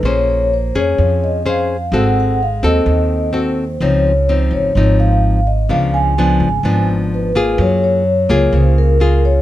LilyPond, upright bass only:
\new Staff \with { instrumentName = "Upright bass" } { \clef bass \time 4/4 \key des \major \tempo 4 = 127 bes,,4. f,8 f,2 | aes,,4. ees,8 ees,2 | des,4. aes,,8 aes,,2 | des,4. aes,,8 aes,,2 |
ges,4. des,8 des,2 | }